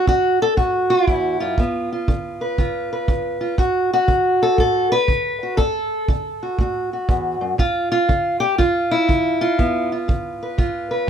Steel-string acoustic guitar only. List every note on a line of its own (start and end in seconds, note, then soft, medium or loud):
0.07 0.54 D3 medium
0.07 0.41 F#4 loud
0.42 0.57 A4 loud
0.57 1.04 A2 medium
0.57 1.40 F#4 medium
0.90 1.11 F4 medium
1.08 1.41 E2 medium
1.08 1.57 E4 medium
1.40 1.58 F#2 medium
1.40 1.90 F4 medium
1.59 2.05 G2 medium
1.59 3.57 B3 soft
1.92 2.58 F4 soft
2.08 2.55 D3 medium
2.41 2.91 B4 soft
2.58 3.05 D3 medium
2.58 3.40 F4 soft
2.93 3.57 B4 soft
3.08 3.55 D3 medium
3.41 3.56 F4 soft
3.58 4.05 D2 medium
3.58 3.92 F#4 medium
3.93 4.92 F#4 medium
4.08 4.55 D3 medium
4.43 4.59 A4 loud
4.58 5.05 A2 medium
4.58 4.91 A4 medium
4.92 5.57 B4 loud
5.09 5.56 D3 medium
5.43 5.57 F#4 soft
5.57 6.05 D2 medium
5.57 7.58 A4 loud
6.10 6.56 D3 medium
6.43 6.59 F#4 soft
6.60 7.06 A2 medium
6.60 6.92 F#4 soft
6.93 7.57 F#4 soft
7.08 7.41 E2 medium
7.41 7.58 F#2 medium
7.58 8.05 G2 medium
7.58 7.90 F4 medium
7.92 8.40 F4 loud
8.09 8.55 D3 medium
8.40 8.58 G4 loud
8.58 9.05 D3 medium
8.58 9.40 F4 medium
8.91 9.91 E4 loud
9.08 9.55 D3 medium
9.41 9.91 F4 medium
9.58 10.05 G2 medium
9.58 11.10 B3 soft
9.92 10.58 F4 soft
10.08 10.55 D3 medium
10.43 10.90 B4 soft
10.58 11.05 D3 medium
10.58 11.10 F4 soft
10.91 11.10 B4 soft